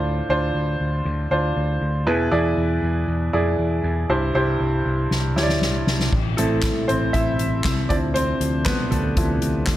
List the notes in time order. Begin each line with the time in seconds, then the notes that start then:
Already playing: D2 A2 D4 F4 C5
0.29 D2 D4 F4 C5
0.54 D2
0.80 D2
1.05 D2
1.31 D2 D4 F4 C5
1.57 D2
1.81 D2
2.07 E2 B2 E4 G#4 B4
2.31 E2 E4 G#4 D5
2.57 E2
2.83 E2
3.08 E2
3.33 F2 E4 G#4 D5
3.58 E2
3.84 E2
4.09 C2 G2 E4 G4 C5
4.35 C2 E4 G4 C5
4.60 C2
4.86 C2
5.11 C2, snare
5.36 D2 E4 G4 C#5, snare
5.42 D5
5.49 snare
5.61 C2, snare
5.87 C2, snare
6.00 snare
6.13 A1 C3 E3 A3 E4, kick, crash
6.37 A1 A3 C4 E4 A4, closed hi-hat
6.62 kick, snare, clap, closed hi-hat
6.88 A1 C4 C5, closed hi-hat
7.13 A1 E4 E5, kick, closed hi-hat
7.39 A1, closed hi-hat
7.64 C2, kick, snare, clap, closed hi-hat
7.89 D2 C3 F3 C4 D4 E4 D5, kick, closed hi-hat
8.14 C4 C5, closed hi-hat
8.41 D2, closed hi-hat
8.65 B3 B4, kick, snare, clap, closed hi-hat
8.91 D2 A3 A4, closed hi-hat, floor tom
9.17 D2 F3 C4 E4, kick, closed hi-hat
9.42 D2, closed hi-hat
9.66 D2, kick, snare, clap, closed hi-hat